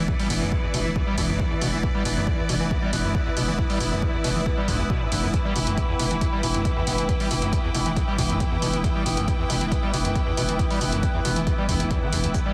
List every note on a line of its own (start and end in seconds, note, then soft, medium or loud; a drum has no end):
0.00 5.33 E3 medium
0.00 5.33 B3 medium
0.00 12.53 E4 medium
0.00 12.53 B4 medium
0.00 5.52 D5 medium
0.08 0.14 E2 medium
0.08 kick loud
0.19 0.28 G3 loud
0.19 open hi-hat medium
0.30 0.41 E1 loud
0.30 0.34 B2 medium
0.30 open hi-hat loud
0.41 0.52 E1 medium
0.41 0.54 F#2 medium
0.52 0.58 E2 medium
0.52 kick loud
0.63 0.67 E2 medium
0.74 0.85 E1 loud
0.74 0.80 B2 medium
0.74 open hi-hat loud
0.85 0.96 E1 medium
0.85 0.91 E3 medium
0.96 1.02 E2 medium
0.96 kick loud
1.07 1.16 G3 loud
1.18 1.28 E1 loud
1.18 1.21 B2 medium
1.18 kick medium
1.18 open hi-hat loud
1.29 1.39 E1 medium
1.29 1.41 F#2 medium
1.40 1.46 E2 medium
1.40 kick loud
1.51 1.54 E2 medium
1.62 1.72 E1 loud
1.62 1.68 B2 medium
1.62 open hi-hat loud
1.73 1.83 E1 medium
1.73 1.79 E3 medium
1.83 1.90 E2 medium
1.83 kick loud
1.95 2.03 G3 loud
2.05 2.16 E1 loud
2.05 2.09 B2 medium
2.05 open hi-hat loud
2.17 2.27 E1 medium
2.17 2.29 F#2 medium
2.27 2.33 E2 medium
2.27 kick loud
2.39 2.42 E2 medium
2.49 2.60 E1 loud
2.49 2.55 B2 medium
2.49 open hi-hat loud
2.60 2.71 E1 medium
2.60 2.66 E3 medium
2.71 2.77 E2 medium
2.71 kick loud
2.82 2.91 G3 loud
2.93 3.04 E1 loud
2.93 2.97 B2 medium
2.93 open hi-hat loud
3.04 3.15 E1 medium
3.04 3.16 F#2 medium
3.15 3.21 E2 medium
3.15 kick loud
3.26 3.30 E2 medium
3.37 3.47 E1 loud
3.37 3.43 B2 medium
3.37 open hi-hat loud
3.48 3.58 E1 medium
3.48 3.54 E3 medium
3.59 3.65 E2 medium
3.59 kick loud
3.70 3.79 G3 loud
3.70 open hi-hat medium
3.80 3.91 E1 loud
3.80 3.84 B2 medium
3.80 open hi-hat loud
3.92 4.02 E1 medium
3.92 4.04 F#2 medium
4.02 4.09 E2 medium
4.02 kick loud
4.14 4.17 E2 medium
4.24 4.35 E1 loud
4.24 4.30 B2 medium
4.24 open hi-hat loud
4.36 4.46 E1 medium
4.36 4.41 E3 medium
4.46 4.52 E2 medium
4.46 kick loud
4.57 4.70 G3 loud
4.68 4.79 E1 loud
4.68 4.77 G2 loud
4.68 kick medium
4.68 open hi-hat medium
4.79 4.90 E1 medium
4.79 4.83 E2 loud
4.90 5.03 B2 loud
4.90 kick loud
5.01 5.07 G2 medium
5.12 5.23 E1 loud
5.12 5.16 G2 medium
5.12 open hi-hat loud
5.23 5.34 E1 medium
5.23 5.29 F#2 medium
5.34 5.40 E2 medium
5.34 12.53 E3 medium
5.34 12.53 B3 medium
5.34 kick loud
5.34 closed hi-hat medium
5.45 5.54 G3 loud
5.50 12.53 G5 medium
5.56 5.66 E1 loud
5.56 5.59 B2 medium
5.56 open hi-hat loud
5.67 5.77 E1 medium
5.67 5.79 F#2 medium
5.67 closed hi-hat medium
5.78 5.84 E2 medium
5.78 kick loud
5.78 closed hi-hat medium
5.89 5.95 E2 loud
5.99 6.10 E1 loud
5.99 6.06 B2 medium
5.99 open hi-hat loud
6.11 6.21 E1 medium
6.11 6.17 E3 medium
6.11 closed hi-hat medium
6.21 6.28 E2 medium
6.21 kick loud
6.21 closed hi-hat medium
6.33 6.41 G3 loud
6.43 6.54 E1 loud
6.43 6.47 B2 medium
6.43 open hi-hat loud
6.54 6.65 E1 medium
6.54 6.67 F#2 medium
6.54 closed hi-hat medium
6.65 6.71 E2 medium
6.65 kick loud
6.65 closed hi-hat medium
6.77 6.82 E2 loud
6.87 6.98 E1 loud
6.87 6.93 B2 medium
6.87 open hi-hat loud
6.98 7.09 E1 medium
6.98 7.04 E3 medium
6.98 closed hi-hat medium
7.09 7.15 E2 medium
7.09 kick loud
7.09 closed hi-hat medium
7.20 7.29 G3 loud
7.20 open hi-hat medium
7.31 7.42 E1 loud
7.31 7.35 B2 medium
7.31 open hi-hat loud
7.42 7.53 E1 medium
7.42 7.54 F#2 medium
7.42 closed hi-hat medium
7.53 7.59 E2 medium
7.53 kick loud
7.53 closed hi-hat medium
7.64 7.70 E2 loud
7.75 7.85 E1 loud
7.75 7.81 B2 medium
7.75 open hi-hat loud
7.86 7.96 E1 medium
7.86 7.92 E3 medium
7.86 closed hi-hat medium
7.97 8.03 E2 medium
7.97 kick loud
7.97 closed hi-hat medium
8.08 8.17 G3 loud
8.18 8.29 E1 loud
8.18 8.22 B2 medium
8.18 kick medium
8.18 open hi-hat loud
8.30 8.40 E1 medium
8.30 8.42 F#2 medium
8.30 closed hi-hat medium
8.40 8.47 E2 medium
8.40 kick loud
8.40 closed hi-hat medium
8.52 8.57 E2 loud
8.62 8.73 E1 loud
8.62 8.68 B2 medium
8.62 open hi-hat loud
8.73 8.84 E1 medium
8.73 8.79 E3 medium
8.73 closed hi-hat medium
8.84 8.90 E2 medium
8.84 kick loud
8.84 closed hi-hat medium
8.95 9.04 G3 loud
9.06 9.17 E1 loud
9.06 9.10 B2 medium
9.06 open hi-hat loud
9.17 9.28 E1 medium
9.17 9.29 F#2 medium
9.17 closed hi-hat medium
9.28 9.34 E2 medium
9.28 kick loud
9.28 closed hi-hat medium
9.39 9.45 E2 loud
9.50 9.60 E1 loud
9.50 9.56 B2 medium
9.50 open hi-hat loud
9.61 9.72 E1 medium
9.61 9.67 E3 medium
9.61 closed hi-hat medium
9.72 9.78 E2 medium
9.72 kick loud
9.72 closed hi-hat medium
9.83 9.92 G3 loud
9.94 10.04 E1 loud
9.94 9.97 B2 medium
9.94 open hi-hat loud
10.05 10.15 E1 medium
10.05 10.17 F#2 medium
10.05 closed hi-hat medium
10.15 10.22 E2 medium
10.15 kick loud
10.15 closed hi-hat medium
10.27 10.33 E2 loud
10.37 10.48 E1 loud
10.37 10.44 B2 medium
10.37 open hi-hat loud
10.49 10.59 E1 medium
10.49 10.55 E3 medium
10.49 closed hi-hat medium
10.59 10.66 E2 medium
10.59 kick loud
10.59 closed hi-hat medium
10.71 10.79 G3 loud
10.71 open hi-hat medium
10.81 10.92 E1 loud
10.81 10.85 B2 medium
10.81 open hi-hat loud
10.92 11.03 E1 medium
10.92 11.05 F#2 medium
10.92 closed hi-hat medium
11.03 11.09 E2 medium
11.03 kick loud
11.03 closed hi-hat medium
11.14 11.20 E2 loud
11.25 11.36 E1 loud
11.25 11.31 B2 medium
11.25 open hi-hat loud
11.36 11.47 E1 medium
11.36 11.42 E3 medium
11.36 closed hi-hat medium
11.47 11.53 E2 medium
11.47 kick loud
11.47 closed hi-hat medium
11.58 11.67 G3 loud
11.69 11.79 E1 loud
11.69 11.75 E2 loud
11.69 kick medium
11.69 open hi-hat loud
11.80 11.91 E1 medium
11.80 11.86 E2 medium
11.80 closed hi-hat medium
11.91 12.04 E2 medium
11.91 kick loud
11.91 closed hi-hat medium
12.02 12.11 E3 medium
12.13 12.23 E1 loud
12.13 12.19 E2 medium
12.13 open hi-hat loud
12.24 12.34 E1 medium
12.24 12.27 E2 loud
12.24 closed hi-hat medium
12.34 12.41 E2 medium
12.34 kick loud
12.34 closed hi-hat medium
12.34 shaker soft
12.46 12.53 G3 loud
12.50 12.53 B5 medium